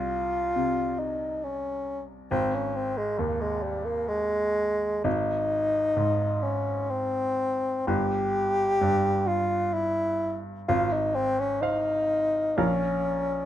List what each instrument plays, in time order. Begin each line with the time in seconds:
Already playing: grand piano C2, bassoon F4
0.56 grand piano C3
0.99 bassoon D#4
1.44 bassoon C#4
2.31 grand piano G#1, bassoon C4
2.54 bassoon C#4
2.75 bassoon C4
2.97 bassoon G#3
3.19 grand piano D#2, bassoon A#3
3.41 bassoon G#3
3.63 bassoon G3
3.84 bassoon A#3
4.08 bassoon G#3
5.04 grand piano G#1, bassoon D#4
5.96 grand piano G#2
6.42 bassoon C#4
6.90 bassoon C4
7.87 grand piano G1, bassoon G4
8.81 grand piano G2
9.26 bassoon F4
9.74 bassoon E4
10.68 grand piano G#1, bassoon F4
10.93 bassoon D#4
11.15 bassoon C4
11.39 bassoon C#4
11.61 bassoon D#4, grand piano C5 F5
12.57 grand piano A#1 A#4 F5, bassoon C#4